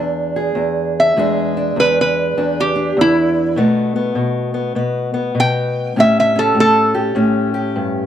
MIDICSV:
0, 0, Header, 1, 3, 480
1, 0, Start_track
1, 0, Tempo, 598802
1, 943, Time_signature, 4, 2, 24, 8
1, 6463, End_track
2, 0, Start_track
2, 0, Title_t, "Resonator guitar played with a steel bar"
2, 0, Program_c, 0, 25
2, 800, Note_on_c, 0, 76, 75
2, 1413, Note_off_c, 0, 76, 0
2, 1442, Note_on_c, 0, 71, 97
2, 1588, Note_off_c, 0, 71, 0
2, 1612, Note_on_c, 0, 71, 81
2, 2064, Note_off_c, 0, 71, 0
2, 2088, Note_on_c, 0, 67, 88
2, 2387, Note_off_c, 0, 67, 0
2, 2413, Note_on_c, 0, 64, 93
2, 2865, Note_off_c, 0, 64, 0
2, 4328, Note_on_c, 0, 79, 105
2, 4781, Note_off_c, 0, 79, 0
2, 4810, Note_on_c, 0, 76, 98
2, 4952, Note_off_c, 0, 76, 0
2, 4969, Note_on_c, 0, 76, 88
2, 5111, Note_off_c, 0, 76, 0
2, 5121, Note_on_c, 0, 69, 89
2, 5267, Note_off_c, 0, 69, 0
2, 5293, Note_on_c, 0, 69, 114
2, 5580, Note_off_c, 0, 69, 0
2, 6463, End_track
3, 0, Start_track
3, 0, Title_t, "Steel-string acoustic guitar"
3, 0, Program_c, 1, 25
3, 0, Note_on_c, 1, 40, 75
3, 0, Note_on_c, 1, 56, 63
3, 0, Note_on_c, 1, 62, 59
3, 290, Note_on_c, 1, 68, 64
3, 432, Note_off_c, 1, 40, 0
3, 441, Note_on_c, 1, 40, 76
3, 917, Note_off_c, 1, 62, 0
3, 921, Note_off_c, 1, 68, 0
3, 923, Note_off_c, 1, 56, 0
3, 924, Note_off_c, 1, 40, 0
3, 934, Note_on_c, 1, 40, 81
3, 941, Note_on_c, 1, 56, 66
3, 945, Note_on_c, 1, 62, 62
3, 956, Note_on_c, 1, 68, 74
3, 1249, Note_off_c, 1, 62, 0
3, 1258, Note_on_c, 1, 62, 67
3, 1403, Note_off_c, 1, 40, 0
3, 1413, Note_on_c, 1, 40, 75
3, 1742, Note_off_c, 1, 68, 0
3, 1894, Note_off_c, 1, 40, 0
3, 1894, Note_off_c, 1, 62, 0
3, 1903, Note_on_c, 1, 40, 75
3, 1905, Note_on_c, 1, 62, 65
3, 2200, Note_off_c, 1, 62, 0
3, 2210, Note_on_c, 1, 62, 64
3, 2369, Note_off_c, 1, 40, 0
3, 2379, Note_on_c, 1, 40, 77
3, 2841, Note_off_c, 1, 62, 0
3, 2843, Note_off_c, 1, 56, 0
3, 2856, Note_on_c, 1, 47, 76
3, 2861, Note_off_c, 1, 40, 0
3, 2865, Note_on_c, 1, 57, 64
3, 2867, Note_on_c, 1, 59, 71
3, 3163, Note_off_c, 1, 59, 0
3, 3172, Note_on_c, 1, 59, 65
3, 3319, Note_off_c, 1, 47, 0
3, 3328, Note_on_c, 1, 47, 72
3, 3630, Note_off_c, 1, 59, 0
3, 3639, Note_on_c, 1, 59, 65
3, 3800, Note_off_c, 1, 47, 0
3, 3807, Note_off_c, 1, 59, 0
3, 3809, Note_on_c, 1, 47, 67
3, 3817, Note_on_c, 1, 59, 68
3, 4109, Note_off_c, 1, 59, 0
3, 4118, Note_on_c, 1, 59, 71
3, 4277, Note_off_c, 1, 47, 0
3, 4286, Note_on_c, 1, 47, 68
3, 4754, Note_off_c, 1, 47, 0
3, 4764, Note_off_c, 1, 57, 0
3, 4775, Note_off_c, 1, 59, 0
3, 4780, Note_on_c, 1, 45, 76
3, 4785, Note_on_c, 1, 61, 62
3, 4797, Note_on_c, 1, 67, 70
3, 5085, Note_off_c, 1, 61, 0
3, 5095, Note_on_c, 1, 61, 63
3, 5238, Note_off_c, 1, 45, 0
3, 5247, Note_on_c, 1, 45, 83
3, 5558, Note_off_c, 1, 67, 0
3, 5568, Note_on_c, 1, 67, 72
3, 5721, Note_off_c, 1, 45, 0
3, 5727, Note_off_c, 1, 61, 0
3, 5731, Note_on_c, 1, 45, 77
3, 5737, Note_on_c, 1, 61, 63
3, 6034, Note_off_c, 1, 67, 0
3, 6044, Note_on_c, 1, 67, 75
3, 6218, Note_on_c, 1, 43, 70
3, 6463, Note_off_c, 1, 43, 0
3, 6463, Note_off_c, 1, 45, 0
3, 6463, Note_off_c, 1, 61, 0
3, 6463, Note_off_c, 1, 67, 0
3, 6463, End_track
0, 0, End_of_file